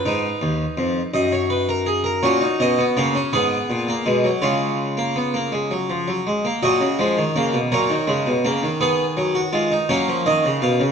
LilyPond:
<<
  \new Staff \with { instrumentName = "Harpsichord" } { \time 6/8 \key ees \minor \tempo 4. = 55 << { ces''4. ees''16 des''16 ces''16 bes'16 aes'16 bes'16 | \key fis \major cis''8 dis''8 cis''8 b'4. | cis''2~ cis''8 r8 | dis''4. cis''4. |
b'4. cis''8 dis''8 eis''8 | } \\ { ees'2. | fis'4. gis'4. | eis'2~ eis'8 r8 | fis'4. ais'4. |
gis'8. fis'16 eis'16 dis'16 cis'4. | } >> }
  \new Staff \with { instrumentName = "Harpsichord" } { \clef bass \time 6/8 \key ees \minor << { r2. | \key fis \major cis'16 dis'16 cis'16 b16 ais16 cis'16 b8. ais16 gis16 fis16 | gis8. ais16 b16 ais16 gis16 fis16 eis16 fis16 gis16 ais16 | fis8 gis8 ais8 fis8 gis8 ais8 |
b8 fis8 gis8 ais4. | } \\ { aes,8 ees,8 f,8 ges,4. | ais,8 b,8 cis8 gis,8 ais,8 b,8 | cis2~ cis8 r8 | ais,16 cis16 eis16 dis16 cis16 b,16 ais,16 dis16 cis16 b,16 cis16 dis16~ |
dis4. fis16 eis16 dis16 cis16 b,16 cis16 | } >> }
>>